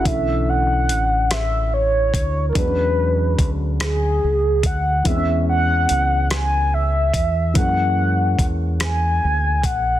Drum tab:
HH |x-xx-x|x-xx-x|x-xx-x|x-xx-x|
SD |---r--|---r--|---r--|---r--|
BD |o----o|o-o--o|o----o|o-o--o|